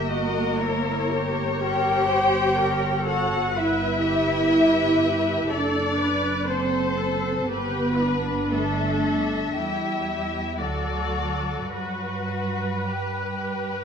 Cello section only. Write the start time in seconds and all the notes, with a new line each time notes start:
Already playing: A#3
1.62 G4
3.07 F#4
3.57 E4
5.52 D4
6.50 C4
7.49 B3
8.53 A3
9.57 G3
10.55 G3
10.61 F#3
11.73 F#3
12.90 G3